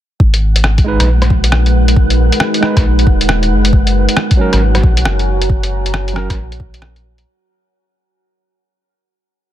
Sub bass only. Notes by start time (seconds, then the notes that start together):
0.20 G#1
1.00 A#1
2.77 A#1
3.07 D#1
3.50 F#1
4.53 G#1
4.83 A#1
5.05 F#1
6.30 G#1
6.37 A#1